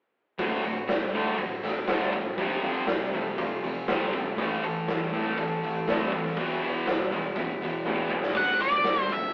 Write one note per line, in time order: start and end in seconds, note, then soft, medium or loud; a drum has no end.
0.38 0.56 D1 medium
0.38 0.62 D2 medium
0.38 1.64 D2 medium
0.38 0.63 A2 medium
0.38 0.63 D3 medium
0.38 kick medium
0.38 open hi-hat medium
0.63 0.81 D1 medium
0.63 0.87 D2 medium
0.63 0.87 A2 medium
0.63 1.37 F#4 medium
0.63 open hi-hat soft
0.88 1.05 D1 medium
0.88 1.11 D2 medium
0.88 1.11 A2 medium
0.88 1.63 A3 medium
0.88 snare loud
0.88 open hi-hat medium
1.13 1.37 D2 medium
1.13 1.30 D2 medium
1.13 1.37 A2 medium
1.13 1.88 D3 medium
1.13 1.38 D3 medium
1.13 open hi-hat soft
1.38 1.55 D1 medium
1.38 1.61 D2 medium
1.38 1.61 A2 medium
1.38 2.38 F#4 medium
1.38 kick medium
1.38 open hi-hat medium
1.63 1.80 D1 medium
1.63 1.86 D2 medium
1.63 1.86 A2 medium
1.63 3.13 A3 medium
1.63 snare soft
1.63 open hi-hat soft
1.87 2.05 G1 medium
1.87 2.12 D2 medium
1.87 2.12 A2 medium
1.87 2.39 D3 medium
1.87 2.13 D3 medium
1.87 snare loud
1.87 open hi-hat medium
2.13 2.29 E1 medium
2.13 2.36 D2 medium
2.13 2.39 A2 medium
2.13 2.37 A2 medium
2.13 kick medium
2.13 open hi-hat soft
2.38 2.55 F1 medium
2.38 2.61 F2 medium
2.38 3.63 F2 medium
2.38 2.62 C3 medium
2.38 2.63 F3 medium
2.38 kick medium
2.38 open hi-hat medium
2.62 2.80 F1 medium
2.62 2.86 F2 medium
2.62 2.87 C3 medium
2.62 2.87 F3 loud
2.62 3.37 F4 medium
2.62 open hi-hat soft
2.87 3.05 F1 medium
2.87 3.11 F2 medium
2.87 3.11 C3 medium
2.87 3.61 C4 medium
2.87 snare loud
2.87 open hi-hat medium
3.13 3.36 F2 medium
3.13 3.30 F2 medium
3.13 3.36 C3 medium
3.13 3.87 A3 medium
3.13 open hi-hat soft
3.38 3.55 F1 medium
3.38 3.61 F2 medium
3.38 3.61 C3 medium
3.38 4.38 F4 medium
3.38 kick medium
3.38 open hi-hat medium
3.63 3.80 F1 medium
3.63 3.86 F2 medium
3.63 3.86 C3 medium
3.63 4.38 C4 medium
3.63 open hi-hat soft
3.88 4.05 A1 medium
3.88 4.12 F2 medium
3.88 4.12 C3 medium
3.88 4.13 F3 medium
3.88 4.38 A3 medium
3.88 snare loud
3.88 open hi-hat medium
4.13 4.30 F1 medium
4.13 4.36 F2 medium
4.13 4.36 C3 medium
4.13 4.38 F3 medium
4.13 kick medium
4.13 open hi-hat soft
4.38 4.54 A1 medium
4.38 5.63 A2 medium
4.38 4.62 A2 medium
4.38 4.62 E3 loud
4.38 4.63 A3 medium
4.38 kick loud
4.38 open hi-hat medium
4.63 4.79 A1 medium
4.63 4.86 A2 medium
4.63 4.86 E3 medium
4.63 5.37 A4 medium
4.63 open hi-hat soft
4.87 5.04 A1 medium
4.87 5.11 A2 medium
4.87 5.11 E3 medium
4.87 5.62 E4 medium
4.87 snare loud
4.87 open hi-hat medium
5.12 5.29 A2 medium
5.12 5.36 A2 medium
5.12 5.37 E3 medium
5.12 5.37 A3 medium
5.12 5.86 C4 medium
5.12 open hi-hat soft
5.38 5.54 A1 medium
5.38 5.61 A2 medium
5.38 5.61 E3 medium
5.38 6.37 A4 medium
5.38 kick medium
5.38 open hi-hat medium
5.63 5.79 A1 medium
5.63 5.85 A2 medium
5.63 5.85 E3 medium
5.63 6.37 E4 medium
5.63 open hi-hat soft
5.87 6.04 D2 medium
5.87 6.11 A2 medium
5.87 6.11 E3 medium
5.87 6.12 A3 medium
5.87 6.37 C4 medium
5.87 snare loud
5.87 open hi-hat medium
6.12 6.29 A1 medium
6.12 6.35 A2 medium
6.12 6.35 E3 medium
6.12 6.37 A3 medium
6.12 kick medium
6.12 open hi-hat soft
6.25 snare soft
6.37 6.53 E1 medium
6.37 7.62 E2 medium
6.37 6.61 E2 medium
6.37 6.61 B2 medium
6.37 6.62 E3 medium
6.37 kick medium
6.37 open hi-hat medium
6.61 6.78 E1 medium
6.61 6.85 E2 medium
6.61 6.86 B2 medium
6.61 6.86 E3 loud
6.61 7.35 E4 medium
6.61 open hi-hat soft
6.87 7.03 E1 medium
6.87 7.09 E2 medium
6.87 7.09 B2 medium
6.87 7.60 B3 medium
6.87 snare medium
6.87 open hi-hat medium
7.11 7.27 E2 medium
7.11 7.34 E2 medium
7.11 7.35 B2 medium
7.11 7.85 G#3 medium
7.11 open hi-hat soft
7.36 7.53 E1 medium
7.36 7.59 E2 medium
7.36 7.59 B2 medium
7.36 8.36 E4 medium
7.36 kick medium
7.36 open hi-hat medium
7.61 7.77 E1 medium
7.61 7.84 E2 medium
7.61 7.85 B2 medium
7.61 8.36 B3 medium
7.61 open hi-hat soft
7.85 8.02 A1 medium
7.85 8.09 E2 medium
7.85 8.10 B2 medium
7.85 8.10 E3 medium
7.85 8.36 G#3 medium
7.85 high tom medium
8.10 8.27 E1 medium
8.10 8.33 E2 medium
8.10 8.34 B2 medium
8.10 8.36 E3 medium
8.10 mid tom medium
8.23 snare medium
8.35 8.58 D1 medium
8.35 9.34 D2 medium
8.35 8.60 F#5 loud
8.35 kick loud
8.35 crash medium
8.60 8.83 D1 medium
8.60 9.12 D5 medium
8.60 closed hi-hat soft
8.72 kick medium
8.84 9.07 D1 medium
8.84 9.34 F#4 medium
8.84 snare loud
8.84 closed hi-hat medium
9.09 9.32 D1 medium
9.09 9.34 D3 medium
9.09 9.34 E5 medium
9.09 kick medium
9.09 closed hi-hat medium